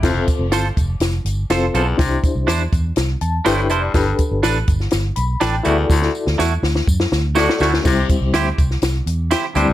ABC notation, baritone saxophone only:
X:1
M:4/4
L:1/8
Q:1/4=123
K:C
V:1 name="Baritone saxophone" clef=bass
F,, z6 E,, | C, z4 z A,, G,, | G,, z6 E,, | D,, z4 z A,, ^F,, |
C, z6 G,, |]